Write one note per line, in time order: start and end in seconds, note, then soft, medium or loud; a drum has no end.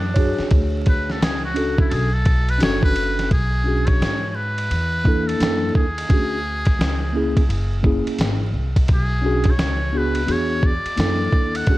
0.00 0.36 F#2 medium
0.00 0.52 D4 medium
0.14 1.16 D4 medium
0.14 1.16 F#4 medium
0.14 1.15 C#5 medium
0.14 kick medium
0.14 ride medium
0.19 1.17 G#4 medium
0.39 muted upright bass stroke soft
0.39 snare soft
0.51 1.18 D2 loud
0.51 kick loud
0.51 ride medium
0.86 1.13 B4 medium
0.86 kick medium
0.86 ride medium
1.10 1.25 A4 medium
1.10 snare soft
1.21 1.88 C#2 medium
1.21 1.44 G#4 medium
1.21 snare loud
1.21 hi-hat pedal soft
1.21 ride medium
1.45 1.77 F#4 medium
1.54 2.08 C#4 medium
1.54 2.08 D4 medium
1.54 2.09 F#4 medium
1.54 2.09 A4 medium
1.54 ride medium
1.78 1.90 E4 medium
1.78 kick loud
1.89 2.58 B1 loud
1.89 2.15 G#4 medium
1.89 1.93 A4 medium
1.89 ride medium
2.13 2.51 A4 medium
2.25 kick medium
2.25 ride medium
2.49 2.62 B4 loud
2.49 ride soft
2.58 3.27 F#1 medium
2.58 3.29 C#4 medium
2.58 3.30 D4 medium
2.58 3.31 F#4 medium
2.58 hi-hat pedal medium
2.58 ride medium
2.63 3.32 A4 medium
2.63 2.83 C#5 loud
2.63 snare loud
2.83 3.28 B4 loud
2.83 kick medium
2.96 ride medium
3.19 snare soft
3.19 ride soft
3.31 3.97 B1 loud
3.31 3.88 G#4 loud
3.31 kick loud
3.31 ride medium
3.64 4.17 C#4 medium
3.64 4.18 D4 medium
3.64 4.19 F#4 soft
3.68 4.19 G#4 medium
3.87 4.30 C#5 loud
3.87 kick medium
3.87 ride medium
4.00 4.67 G#2 medium
4.00 snare loud
4.00 hi-hat pedal soft
4.00 ride medium
4.30 4.37 C#5 medium
4.35 5.29 B4 loud
4.58 ride medium
4.71 5.37 E2 medium
4.71 ride medium
5.04 5.38 A#3 medium
5.04 5.39 D4 medium
5.04 5.40 E4 medium
5.04 kick medium
5.08 5.42 A4 medium
5.27 5.75 A4 medium
5.27 ride soft
5.39 5.73 F#2 medium
5.39 5.83 A#3 medium
5.39 5.84 D4 medium
5.39 5.85 E4 medium
5.39 snare loud
5.39 hi-hat pedal medium
5.39 ride medium
5.43 5.85 A4 medium
5.75 6.08 D#2 medium
5.75 7.81 G#4 medium
5.75 kick medium
5.98 ride medium
6.09 6.76 D2 loud
6.09 6.37 C#4 medium
6.09 6.37 D4 medium
6.09 6.38 F#4 medium
6.09 kick loud
6.09 ride medium
6.13 6.39 G#4 medium
6.65 kick medium
6.65 ride medium
6.79 7.46 C#2 medium
6.79 snare loud
6.79 hi-hat pedal soft
6.79 ride medium
7.13 7.41 A#3 medium
7.13 7.42 C#4 medium
7.13 7.42 E4 medium
7.13 7.43 G#4 medium
7.37 kick medium
7.37 ride medium
7.49 8.03 F#1 medium
7.49 ride medium
7.83 8.27 A#3 medium
7.83 8.28 C#4 medium
7.83 8.29 E4 medium
7.83 8.29 G#4 medium
7.83 kick medium
8.06 muted upright bass stroke soft
8.06 ride soft
8.19 8.52 G#1 medium
8.19 snare loud
8.19 hi-hat pedal soft
8.19 ride medium
8.53 8.87 C2 medium
8.76 kick medium
8.76 ride medium
8.88 9.55 B1 loud
8.88 kick loud
8.88 ride medium
8.94 9.52 G#4 medium
9.22 9.50 C#4 medium
9.22 9.51 D4 medium
9.22 9.51 F#4 medium
9.26 9.52 G#4 medium
9.44 kick medium
9.44 ride medium
9.50 9.99 C#5 medium
9.58 10.25 C#2 medium
9.58 snare medium
9.58 hi-hat pedal soft
9.58 ride medium
9.92 10.20 B3 medium
9.92 10.21 D4 medium
9.92 10.22 F#4 medium
9.96 10.22 G#4 medium
9.96 10.33 B4 medium
10.15 ride medium
10.26 10.82 E2 medium
10.26 10.71 B3 medium
10.26 10.72 D4 medium
10.26 10.72 F#4 medium
10.26 10.73 G#4 medium
10.26 ride medium
10.32 10.67 C#5 loud
10.63 11.58 D5 loud
10.63 kick medium
10.85 muted upright bass stroke soft
10.85 ride medium
10.96 11.31 F#2 medium
10.96 11.67 A#3 medium
10.96 11.67 D4 medium
10.96 11.68 E4 medium
10.96 11.69 A4 medium
10.96 snare loud
10.96 hi-hat pedal medium
10.96 ride medium
11.32 11.66 D#2 medium
11.32 kick medium
11.55 11.78 F#5 loud
11.55 ride medium
11.67 11.78 D2 loud
11.67 11.78 C#4 medium
11.67 11.78 D4 medium
11.67 11.78 F#4 medium
11.67 kick loud
11.67 ride medium
11.71 11.78 G#4 medium